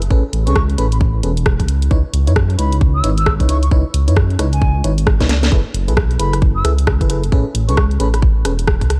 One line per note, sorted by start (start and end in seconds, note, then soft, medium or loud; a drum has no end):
0.02 closed hi-hat medium
0.10 0.22 A1 loud
0.10 0.23 C#4 loud
0.10 0.23 G#4 medium
0.10 0.23 A4 medium
0.10 0.23 B4 loud
0.10 kick loud
0.33 0.48 A1 medium
0.33 closed hi-hat loud
0.47 0.76 C#2 loud
0.47 0.55 C#4 medium
0.47 0.55 G#4 medium
0.47 0.55 A4 medium
0.47 0.55 B4 medium
0.47 0.62 C#6 medium
0.47 closed hi-hat medium
0.56 kick loud
0.56 cross-stick loud
0.70 closed hi-hat soft
0.78 1.21 A1 loud
0.78 0.86 C#4 medium
0.78 0.86 G#4 medium
0.78 0.86 A4 medium
0.78 0.86 B4 loud
0.78 0.87 B5 medium
0.78 closed hi-hat loud
0.92 0.98 B5 medium
0.92 closed hi-hat medium
1.01 kick loud
1.23 1.61 E1 loud
1.23 1.31 C#4 medium
1.23 1.31 G#4 medium
1.23 1.31 A4 medium
1.23 1.31 B4 medium
1.23 closed hi-hat loud
1.37 closed hi-hat medium
1.46 kick loud
1.46 cross-stick loud
1.60 1.89 C#2 medium
1.60 kick medium
1.60 closed hi-hat medium
1.68 closed hi-hat loud
1.82 closed hi-hat medium
1.91 2.03 C#2 loud
1.91 1.99 D#4 medium
1.91 1.99 E4 medium
1.91 1.99 B4 medium
1.91 1.99 C#5 loud
1.91 kick loud
2.13 2.29 C#2 medium
2.13 closed hi-hat loud
2.27 2.57 F#2 loud
2.27 2.32 D#4 medium
2.27 2.32 E4 medium
2.27 2.32 B4 medium
2.27 2.32 C#5 medium
2.27 closed hi-hat medium
2.36 kick loud
2.36 cross-stick loud
2.50 closed hi-hat soft
2.59 3.02 C#2 medium
2.59 3.02 D#4 medium
2.59 3.02 E4 medium
2.59 3.02 B4 medium
2.59 3.02 C#5 medium
2.59 2.77 B5 medium
2.59 closed hi-hat loud
2.72 closed hi-hat medium
2.81 kick loud
2.95 3.10 E6 medium
3.04 3.41 G#1 loud
3.04 3.12 D#4 medium
3.04 3.12 E4 medium
3.04 3.12 B4 medium
3.04 3.12 C#5 loud
3.04 closed hi-hat loud
3.17 3.33 E6 medium
3.17 closed hi-hat medium
3.26 kick loud
3.26 cross-stick loud
3.40 3.69 C#2 medium
3.40 3.48 D#4 medium
3.40 3.48 E4 medium
3.40 3.48 B4 medium
3.40 3.48 C#5 medium
3.40 kick medium
3.40 closed hi-hat medium
3.49 3.61 D#4 medium
3.49 3.61 E4 medium
3.49 3.61 B4 medium
3.49 3.61 C#5 loud
3.49 3.58 C#6 medium
3.49 closed hi-hat loud
3.63 3.68 C#6 medium
3.63 closed hi-hat medium
3.71 3.83 C#2 loud
3.71 3.84 D#4 medium
3.71 3.84 E4 medium
3.71 3.84 B4 medium
3.71 3.84 C#5 loud
3.71 kick loud
3.94 4.09 C#2 medium
3.94 closed hi-hat loud
4.08 4.37 F#2 loud
4.08 4.16 D#4 medium
4.08 4.16 E4 medium
4.08 4.16 B4 medium
4.08 4.16 C#5 medium
4.08 closed hi-hat medium
4.16 kick loud
4.16 cross-stick loud
4.30 closed hi-hat soft
4.39 4.82 C#2 loud
4.39 4.47 D#4 medium
4.39 4.47 E4 medium
4.39 4.47 B4 medium
4.39 4.47 C#5 loud
4.39 cross-stick medium
4.39 closed hi-hat loud
4.53 4.84 G#5 medium
4.53 closed hi-hat medium
4.62 kick loud
4.84 5.22 G#1 loud
4.84 4.92 D#4 medium
4.84 4.92 E4 medium
4.84 4.92 B4 medium
4.84 4.92 C#5 medium
4.84 closed hi-hat loud
4.98 closed hi-hat medium
5.07 kick loud
5.07 cross-stick loud
5.20 5.50 C#2 medium
5.20 5.25 D#4 medium
5.20 5.25 E4 medium
5.20 5.25 B4 medium
5.20 5.26 C#5 loud
5.20 kick medium
5.20 snare medium
5.20 closed hi-hat medium
5.29 snare medium
5.29 closed hi-hat loud
5.43 snare medium
5.43 closed hi-hat medium
5.52 5.64 F#1 loud
5.52 5.60 E4 medium
5.52 5.60 G#4 medium
5.52 5.60 A4 medium
5.52 5.60 B4 medium
5.52 kick loud
5.74 5.90 F#1 medium
5.74 closed hi-hat loud
5.88 6.18 B1 loud
5.88 5.93 E4 medium
5.88 5.93 G#4 medium
5.88 5.93 A4 medium
5.88 5.93 B4 medium
5.88 closed hi-hat medium
5.97 kick loud
5.97 cross-stick loud
6.11 closed hi-hat soft
6.19 6.63 F#1 loud
6.19 6.62 E4 medium
6.19 6.62 G#4 medium
6.19 6.62 A4 medium
6.19 6.62 B4 medium
6.19 6.38 B5 medium
6.19 closed hi-hat loud
6.33 cross-stick medium
6.33 closed hi-hat medium
6.42 kick loud
6.56 6.71 E6 medium
6.64 7.02 C#2 loud
6.64 6.73 E4 medium
6.64 6.73 G#4 medium
6.64 6.73 A4 medium
6.64 6.73 B4 loud
6.64 cross-stick medium
6.64 closed hi-hat loud
6.78 closed hi-hat medium
6.87 kick loud
6.87 cross-stick loud
7.01 7.30 F#1 medium
7.01 7.08 E4 medium
7.01 7.08 G#4 medium
7.01 7.08 A4 medium
7.01 7.08 B4 medium
7.01 kick medium
7.01 closed hi-hat medium
7.10 7.22 E4 medium
7.10 7.22 G#4 medium
7.10 7.22 A4 medium
7.10 7.22 B4 medium
7.10 closed hi-hat loud
7.24 closed hi-hat medium
7.32 7.44 A1 loud
7.32 7.45 C#4 medium
7.32 7.45 G#4 medium
7.32 7.45 A4 medium
7.32 7.45 B4 loud
7.32 kick loud
7.55 7.70 A1 medium
7.55 closed hi-hat loud
7.68 7.98 C#2 loud
7.68 7.77 C#4 medium
7.68 7.77 G#4 medium
7.68 7.77 A4 medium
7.68 7.77 B4 medium
7.68 7.84 C#6 medium
7.68 closed hi-hat medium
7.77 kick loud
7.77 cross-stick loud
7.91 closed hi-hat soft
8.00 8.43 A1 loud
8.00 8.08 C#4 medium
8.00 8.08 G#4 medium
8.00 8.08 A4 medium
8.00 8.08 B4 loud
8.00 8.09 B5 medium
8.00 closed hi-hat loud
8.14 8.19 B5 medium
8.14 cross-stick medium
8.14 closed hi-hat medium
8.22 kick loud
8.45 8.83 E1 loud
8.45 8.53 C#4 medium
8.45 8.53 G#4 medium
8.45 8.53 A4 medium
8.45 8.53 B4 medium
8.45 cross-stick medium
8.45 closed hi-hat loud
8.59 closed hi-hat medium
8.68 kick loud
8.68 cross-stick loud
8.81 9.00 C#2 medium
8.81 kick medium
8.81 closed hi-hat medium
8.90 cross-stick medium
8.90 closed hi-hat loud